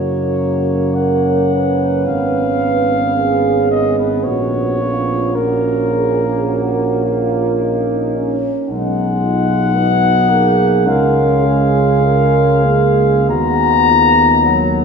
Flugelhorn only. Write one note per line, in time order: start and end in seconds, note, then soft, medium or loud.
0.00 0.96 C#5 medium
0.95 2.08 F#5 medium
2.06 3.71 F5 loud
3.71 3.97 D#5 medium
3.99 4.26 B4 medium
4.24 5.37 C#5 medium
5.35 7.60 A#4 medium
8.69 10.90 F#5 loud
10.88 13.29 F5 medium
13.30 14.85 A#5 loud